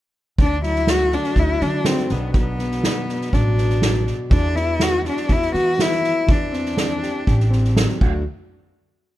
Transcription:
0.38 upright bass D2, steel-string acoustic guitar D3, cello D4, kick, snare
0.62 steel-string acoustic guitar F#3, cello E4, snare
0.75 snare
0.87 steel-string acoustic guitar A3, cello F#4, snare
1.12 cello D4, steel-string acoustic guitar F#4, snare
1.24 snare
1.35 upright bass D2, steel-string acoustic guitar D4, kick, snare
1.40 cello E4
1.60 upright bass D3, steel-string acoustic guitar F#3, cello D4, snare
1.84 steel-string acoustic guitar A3, cello C4, snare
1.97 snare
2.09 upright bass B1, steel-string acoustic guitar B2 F#3 B3 D4, cello B3, snare
2.13 steel-string acoustic guitar F#4
2.34 steel-string acoustic guitar F#3, cello B3, kick, snare
2.59 steel-string acoustic guitar B3, snare
2.71 snare
2.84 steel-string acoustic guitar F#4, snare
3.09 steel-string acoustic guitar D4, snare
3.21 snare
3.33 upright bass A1, steel-string acoustic guitar F#3, cello D4, kick, snare
3.58 steel-string acoustic guitar B3, snare
3.69 snare
3.82 steel-string acoustic guitar F#3, snare
3.94 snare
4.06 steel-string acoustic guitar B2, snare
4.30 upright bass E2, steel-string acoustic guitar E3, cello D4, kick, snare
4.55 steel-string acoustic guitar B3, cello E4, snare
4.80 steel-string acoustic guitar E4, cello F#4, snare
5.05 steel-string acoustic guitar F#4, snare
5.09 cello D4
5.17 snare
5.28 upright bass E2, steel-string acoustic guitar B3, kick, snare
5.33 cello E4
5.42 snare
5.52 upright bass E3, steel-string acoustic guitar B3, cello F#4, snare
5.78 steel-string acoustic guitar B3, cello E4, snare
5.92 snare
6.01 steel-string acoustic guitar B3, snare
6.27 upright bass E2, steel-string acoustic guitar E3, kick, snare
6.31 cello D4
6.52 steel-string acoustic guitar C4, snare
6.65 snare
6.77 steel-string acoustic guitar D4, snare
7.02 steel-string acoustic guitar G4, snare
7.27 upright bass A1, steel-string acoustic guitar G4, kick, snare
7.40 snare
7.51 steel-string acoustic guitar C4, snare
7.64 snare
7.75 steel-string acoustic guitar F#3, snare
7.89 snare
8.00 upright bass D2, steel-string acoustic guitar D3 F#3 A3 D4 F#4, kick, crash

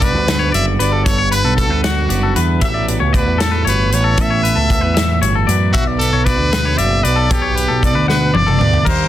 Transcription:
Already playing: picked electric bass B1, clean electric guitar G2 B3
0.01 clean electric guitar F#4 D5, trumpet B4, kick, closed hi-hat
0.15 picked electric bass D2
0.27 clean electric guitar D3 B4, snare, closed hi-hat
0.39 clean electric guitar C#5
0.52 picked electric bass F#1, clean electric guitar F#4 D5, trumpet E5, closed hi-hat
0.79 picked electric bass G1, clean electric guitar B3 B4, trumpet D5, closed hi-hat
0.92 clean electric guitar A4
1.05 picked electric bass G1, clean electric guitar G2, trumpet C#5, kick, closed hi-hat
1.18 clean electric guitar C#5
1.31 clean electric guitar B3 B4, trumpet B4, closed hi-hat
1.44 picked electric bass B1, clean electric guitar A4
1.57 clean electric guitar F#4, trumpet A4, kick, closed hi-hat
1.70 picked electric bass D2, clean electric guitar B4
1.84 clean electric guitar D3 F#5, trumpet F#4, snare, closed hi-hat
2.09 picked electric bass F#1, clean electric guitar B3 D5, closed hi-hat
2.23 clean electric guitar A4
2.36 picked electric bass E2, clean electric guitar B3 B4, closed hi-hat
2.61 picked electric bass A1, clean electric guitar A2 A3 B3 F#4 G4 E5, trumpet E5, kick, closed hi-hat
2.74 clean electric guitar D5
2.88 clean electric guitar B3, closed hi-hat
3.00 picked electric bass C#2, clean electric guitar C#5
3.13 trumpet B4, clean electric guitar D5, kick, closed hi-hat
3.17 clean electric guitar F#4
3.28 picked electric bass E2
3.38 clean electric guitar A4, trumpet A4, snare, closed hi-hat
3.43 clean electric guitar E3
3.51 clean electric guitar B4
3.65 picked electric bass G1, clean electric guitar F#4 C#5, trumpet B4, closed hi-hat
3.91 picked electric bass A1, clean electric guitar B4, trumpet C#5, closed hi-hat
3.95 clean electric guitar B3
4.04 clean electric guitar A4
4.18 picked electric bass A1, clean electric guitar A2, trumpet E5, kick, closed hi-hat
4.30 clean electric guitar C#5
4.43 clean electric guitar B3 B4, closed hi-hat
4.55 picked electric bass C#2, clean electric guitar A4
4.70 clean electric guitar F#4, kick, closed hi-hat
4.81 picked electric bass E2, clean electric guitar B4
4.95 clean electric guitar E3 E5, snare, closed hi-hat
5.21 picked electric bass G1, clean electric guitar F#4 C#5, closed hi-hat
5.35 clean electric guitar A4
5.47 picked electric bass F#2, clean electric guitar B3 D5, closed hi-hat
5.73 picked electric bass B1, clean electric guitar B2 E5, trumpet F#4, kick, closed hi-hat
5.87 clean electric guitar D5
5.98 trumpet A4, closed hi-hat
6.03 clean electric guitar B3
6.13 picked electric bass B1, clean electric guitar C#5
6.25 clean electric guitar F#4 D5, trumpet B4, kick, closed hi-hat
6.39 picked electric bass D2
6.53 clean electric guitar B2 B4, snare, closed hi-hat
6.65 clean electric guitar C#5
6.78 picked electric bass F#1, clean electric guitar F#4 D5, trumpet E5, closed hi-hat
7.03 picked electric bass B1, clean electric guitar B4, trumpet D5, closed hi-hat
7.08 clean electric guitar B3
7.16 clean electric guitar A4
7.31 picked electric bass B1, clean electric guitar B2, trumpet G4, kick, closed hi-hat
7.42 clean electric guitar C#5
7.55 clean electric guitar B3 B4, closed hi-hat
7.68 picked electric bass B1, clean electric guitar A4
7.83 clean electric guitar D4, trumpet D5, kick, closed hi-hat
7.95 picked electric bass D2, clean electric guitar B4
8.08 clean electric guitar B2 F#5, trumpet B4, snare
8.34 picked electric bass F#1, clean electric guitar D4 D5, trumpet D5, high tom
8.46 clean electric guitar A4, mid tom
8.59 picked electric bass D2, clean electric guitar B3 D5, mid tom
8.73 floor tom
8.85 picked electric bass D#2, clean electric guitar D#3 G3 D4 D#4 G4 A#4, trumpet C5, kick, crash

